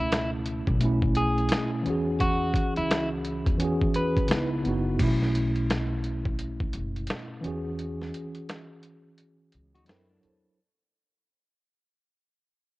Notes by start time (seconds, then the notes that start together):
Already playing: B2 A3 C#4 E4
0.00 C#2 E4
0.12 finger snap, snare, closed hi-hat
0.46 closed hi-hat
0.67 B1, kick
0.78 B2 A3, closed hi-hat
0.83 C#4 E4
1.02 kick
1.15 G#4, closed hi-hat
1.38 closed hi-hat
1.49 snare, closed hi-hat
1.53 finger snap
1.83 E2 E3 C#4, closed hi-hat
1.88 F#4 G#4
2.20 F#4, kick, closed hi-hat
2.54 kick, closed hi-hat
2.76 C#2 E4, closed hi-hat
2.91 finger snap, snare, closed hi-hat
3.25 closed hi-hat
3.46 E2, kick, closed hi-hat
3.57 E3 C#4, closed hi-hat
3.62 F#4 G#4
3.81 kick
3.94 B4, closed hi-hat
4.17 kick, closed hi-hat
4.27 C#2 C#3 B3, closed hi-hat
4.31 D#4 E4, finger snap, snare
4.62 F#1 C#3 B3, closed hi-hat
4.66 D#4 F#4
4.97 B1 B2 A3, kick, closed hi-hat, crash
5.01 C#4 E4
5.23 snare
5.35 closed hi-hat
5.56 closed hi-hat
5.70 finger snap, snare, closed hi-hat
6.04 closed hi-hat
6.26 kick
6.39 closed hi-hat
6.61 kick
6.73 F#1, closed hi-hat
6.96 closed hi-hat
7.07 snare, closed hi-hat
7.11 finger snap
7.41 E2 E3 C#4, closed hi-hat
7.46 F#4 G#4
7.79 closed hi-hat
8.01 snare
8.14 closed hi-hat
8.35 closed hi-hat
8.49 finger snap, snare, closed hi-hat
8.83 closed hi-hat
9.18 closed hi-hat
9.52 C#2, closed hi-hat
9.74 D#4 F#4, closed hi-hat
9.85 F#2 F#3 C4 D4 E4, closed hi-hat
9.89 A4 A#4, finger snap, snare
10.09 A#3 D4
10.20 F#3 D4 E4, closed hi-hat
10.24 E2 A4 C5